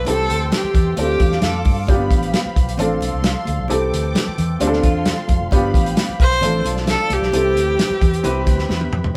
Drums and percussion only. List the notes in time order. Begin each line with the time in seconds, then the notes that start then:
0.05 closed hi-hat, muted conga
0.28 closed hi-hat, muted conga
0.52 snare, closed hi-hat, high conga
0.74 kick, closed hi-hat, low conga
0.97 closed hi-hat, muted conga
1.20 kick, closed hi-hat, muted conga
1.32 snare
1.41 snare, closed hi-hat, high conga
1.54 high conga
1.65 kick, open hi-hat, high conga
1.87 kick, closed hi-hat, muted conga
2.11 kick, closed hi-hat
2.23 closed hi-hat
2.34 snare, closed hi-hat, high conga
2.56 kick, closed hi-hat
2.69 closed hi-hat
2.78 closed hi-hat, muted conga, low conga
3.01 closed hi-hat, muted conga
3.22 snare, closed hi-hat, high conga
3.45 closed hi-hat, high conga
3.68 closed hi-hat, muted conga
3.94 closed hi-hat
4.15 snare, closed hi-hat, high conga
4.38 closed hi-hat, low conga
4.60 closed hi-hat, muted conga
4.73 snare
4.83 kick, closed hi-hat, muted conga
5.05 snare, closed hi-hat, high conga
5.28 kick, closed hi-hat, high conga
5.51 kick, closed hi-hat, muted conga
5.74 kick, closed hi-hat
5.86 closed hi-hat
5.97 snare, closed hi-hat, high conga
6.20 kick, closed hi-hat
6.32 closed hi-hat
6.41 closed hi-hat, muted conga, low conga
6.65 closed hi-hat, muted conga
6.77 snare
6.86 snare, closed hi-hat, high conga
7.10 closed hi-hat, high conga
7.23 snare
7.32 closed hi-hat, muted conga
7.54 closed hi-hat, muted conga
7.79 snare, closed hi-hat, high conga
8.01 kick, closed hi-hat, low conga
8.14 closed hi-hat
8.24 closed hi-hat, muted conga
8.46 kick, closed hi-hat, muted conga
8.59 snare
8.69 snare, high conga
8.81 high tom
8.92 mid tom, high conga
9.04 floor tom